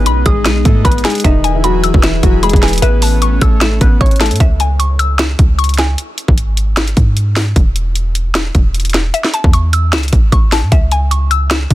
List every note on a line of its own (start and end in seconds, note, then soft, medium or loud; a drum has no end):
0.00 1.23 G#3 medium
0.00 0.23 B3 medium
0.00 1.23 B3 medium
0.00 1.23 D#4 medium
0.00 0.22 B4 loud
0.00 0.65 D#5 medium
0.00 0.85 G#5 medium
0.06 0.25 B1 loud
0.06 0.83 B5 medium
0.06 closed hi-hat medium
0.26 0.47 G#1 loud
0.26 0.42 G#3 medium
0.26 0.41 G#4 medium
0.26 1.25 D#6 loud
0.26 kick loud
0.26 closed hi-hat medium
0.45 0.64 B1 loud
0.45 0.61 G#3 medium
0.45 0.61 G#4 medium
0.45 1.24 D#7 medium
0.45 snare loud
0.45 closed hi-hat medium
0.65 0.84 G#2 loud
0.65 0.81 A3 medium
0.65 0.81 A4 medium
0.65 kick loud
0.65 closed hi-hat medium
0.85 1.04 G#1 loud
0.85 1.01 B3 medium
0.85 1.00 B4 medium
0.85 1.24 B5 loud
0.85 kick loud
0.85 closed hi-hat medium
0.92 closed hi-hat medium
0.98 closed hi-hat medium
1.05 1.21 G#3 medium
1.05 1.20 G#4 medium
1.05 1.24 G#5 medium
1.05 snare loud
1.05 closed hi-hat medium
1.10 closed hi-hat medium
1.10 closed hi-hat soft
1.15 closed hi-hat medium
1.18 closed hi-hat soft
1.20 closed hi-hat medium
1.24 1.91 E1 loud
1.24 1.53 D#3 medium
1.24 4.37 E3 medium
1.24 1.53 D#4 loud
1.24 2.81 E4 medium
1.24 2.81 G#4 medium
1.24 2.81 B4 loud
1.24 2.23 E5 medium
1.24 kick loud
1.24 closed hi-hat medium
1.44 2.43 G#5 medium
1.44 closed hi-hat medium
1.55 1.63 E3 medium
1.55 1.62 E4 medium
1.64 2.01 F#3 medium
1.64 2.01 F#4 medium
1.64 2.42 B5 medium
1.64 closed hi-hat medium
1.84 2.82 E6 loud
1.84 closed hi-hat medium
1.94 2.22 E1 loud
1.94 kick loud
2.03 2.19 E3 medium
2.03 2.19 E4 medium
2.03 2.82 E7 medium
2.03 snare loud
2.03 closed hi-hat medium
2.23 2.52 E1 loud
2.23 2.39 F#3 medium
2.23 2.38 F#4 medium
2.23 kick loud
2.23 closed hi-hat medium
2.43 2.80 G#3 medium
2.43 2.80 G#4 medium
2.43 2.82 B5 loud
2.43 closed hi-hat medium
2.49 2.81 E1 loud
2.49 kick loud
2.49 closed hi-hat medium
2.56 closed hi-hat medium
2.63 2.82 G#5 medium
2.63 snare loud
2.63 closed hi-hat medium
2.68 closed hi-hat medium
2.68 closed hi-hat soft
2.73 closed hi-hat medium
2.76 closed hi-hat soft
2.78 closed hi-hat medium
2.82 3.39 A1 loud
2.82 4.39 A3 medium
2.82 3.38 B3 medium
2.82 4.39 C#4 loud
2.82 3.38 B4 loud
2.82 3.81 E5 medium
2.82 closed hi-hat medium
3.02 4.01 A5 medium
3.02 open hi-hat medium
3.22 4.00 C#6 medium
3.22 closed hi-hat medium
3.41 3.79 A1 loud
3.41 3.58 A3 medium
3.41 3.57 A4 medium
3.41 4.40 E6 loud
3.41 kick loud
3.41 closed hi-hat medium
3.61 3.77 A3 medium
3.61 3.77 A4 medium
3.61 4.40 E7 medium
3.61 snare loud
3.61 closed hi-hat medium
3.81 4.00 A1 loud
3.81 3.97 B3 medium
3.81 3.97 B4 medium
3.81 kick loud
3.81 closed hi-hat medium
4.01 4.32 A1 loud
4.01 4.17 C#4 medium
4.01 4.16 C#5 medium
4.01 4.40 C#6 medium
4.01 kick loud
4.01 closed hi-hat soft
4.06 closed hi-hat soft
4.11 closed hi-hat medium
4.16 closed hi-hat medium
4.20 4.36 A3 medium
4.20 4.36 A4 medium
4.20 4.40 A5 medium
4.20 snare loud
4.20 closed hi-hat medium
4.26 closed hi-hat medium
4.31 4.40 A2 loud
4.31 closed hi-hat medium
4.36 closed hi-hat medium
4.40 5.35 C#2 loud
4.40 5.39 E5 medium
4.40 kick loud
4.40 closed hi-hat medium
4.60 5.59 G#5 medium
4.60 closed hi-hat medium
4.79 5.57 C#6 medium
4.79 closed hi-hat medium
4.99 5.98 E6 loud
4.99 closed hi-hat medium
5.19 5.98 E7 medium
5.19 snare loud
5.19 closed hi-hat medium
5.39 5.96 C#2 loud
5.39 kick loud
5.39 closed hi-hat medium
5.59 5.98 C#6 medium
5.59 closed hi-hat medium
5.64 closed hi-hat medium
5.69 closed hi-hat medium
5.74 closed hi-hat medium
5.78 5.98 G#5 medium
5.78 snare loud
5.78 closed hi-hat medium
5.98 closed hi-hat medium
6.18 closed hi-hat medium
6.28 6.94 G#1 loud
6.28 kick loud
6.38 closed hi-hat medium
6.57 closed hi-hat medium
6.77 snare loud
6.77 closed hi-hat soft
6.88 closed hi-hat medium
6.97 7.54 G#2 loud
6.97 kick loud
6.97 closed hi-hat medium
7.17 closed hi-hat medium
7.36 snare loud
7.36 open hi-hat medium
7.56 8.51 E1 loud
7.56 kick loud
7.56 closed hi-hat medium
7.76 closed hi-hat medium
7.96 closed hi-hat medium
8.15 closed hi-hat medium
8.35 snare loud
8.35 closed hi-hat medium
8.55 9.12 E1 loud
8.55 kick medium
8.55 closed hi-hat medium
8.74 closed hi-hat medium
8.80 closed hi-hat medium
8.85 closed hi-hat medium
8.90 closed hi-hat medium
8.94 snare loud
8.94 closed hi-hat medium
9.14 10.13 E5 medium
9.14 closed hi-hat medium
9.24 snare medium
9.34 10.32 A5 medium
9.34 closed hi-hat medium
9.44 9.94 E2 loud
9.44 kick loud
9.53 10.31 C#6 medium
9.53 closed hi-hat medium
9.73 10.72 E6 loud
9.73 closed hi-hat medium
9.93 10.12 C#2 loud
9.93 10.72 E7 medium
9.93 snare loud
9.93 closed hi-hat medium
9.98 closed hi-hat medium
10.03 closed hi-hat medium
10.08 closed hi-hat medium
10.13 10.32 A1 loud
10.13 kick loud
10.13 closed hi-hat medium
10.32 10.64 A1 loud
10.32 10.72 C#6 medium
10.32 kick loud
10.32 closed hi-hat medium
10.52 10.72 A5 medium
10.52 snare loud
10.52 open hi-hat medium
10.63 10.71 A2 loud
10.72 11.67 C#2 loud
10.72 11.71 E5 medium
10.72 kick loud
10.72 closed hi-hat medium
10.92 11.74 G#5 medium
10.92 closed hi-hat medium
11.11 11.74 C#6 medium
11.11 closed hi-hat medium
11.31 11.74 E6 loud
11.31 closed hi-hat medium
11.51 11.74 E7 medium
11.51 snare loud
11.51 closed hi-hat medium
11.70 11.74 C#2 loud
11.70 kick loud
11.70 closed hi-hat medium